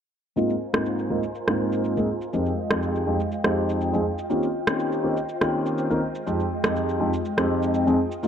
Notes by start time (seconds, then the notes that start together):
0.36 G#2 A#3 C4 D#4 F4 A#4 C5 G#5, shaker
0.50 shaker
0.73 G#2 A#3 C4 D#4 F4, cross-stick, shaker
0.86 shaker
0.99 shaker
1.10 G#2 A#3 C4 D#4 F4
1.23 shaker
1.35 shaker
1.48 G#2 A#3 C4 D#4 F4, cross-stick, shaker
1.72 shaker
1.84 shaker
1.97 G#2 A#3 C4 D#4 G#4, shaker
2.21 shaker
2.33 F2 G#3 C4 D#4 G4 D#5 G5, shaker
2.46 shaker
2.70 F2 G#3 C4 D#4 G4, cross-stick, shaker
2.82 shaker
2.95 shaker
3.07 F2 G#3 C4 D#4 G4
3.20 shaker
3.32 shaker
3.44 F2 G#3 C4 D#4 G4, cross-stick, shaker
3.69 shaker
3.81 shaker
3.93 F2 G#3 C4 D#4 G#4, shaker
4.18 shaker
4.30 D#3 A#3 C4 C#4 F4 G4 C5 D#5, shaker
4.43 shaker
4.67 D#3 A#3 C4 C#4 F4 G4, cross-stick, shaker
4.79 shaker
4.92 shaker
5.03 D#3 A#3 C4 C#4 F4 G4
5.17 shaker
5.29 shaker
5.41 D#3 A#3 C4 C#4 F4 G4, cross-stick, shaker
5.66 shaker
5.78 shaker
5.90 D#3 A#3 C4 C#4 F4 A#4, shaker
6.02 G#3 D#5
6.15 shaker
6.27 F2 G#3 C4 D#4 G4, shaker
6.40 shaker
6.64 F2 G#3 C4 D#4 G4, cross-stick, shaker
6.76 shaker
6.89 shaker
7.00 F2 G#3 C4 D#4 G4
7.13 shaker
7.25 shaker
7.37 F2 G#3 C4 D#4 G4, cross-stick, shaker
7.63 shaker
7.74 shaker
7.87 F2 G#3 C4 D#4 G#4, shaker
8.12 shaker
8.23 G#2 A#3 C4 D#4 F4 A#4 C5 G#5, shaker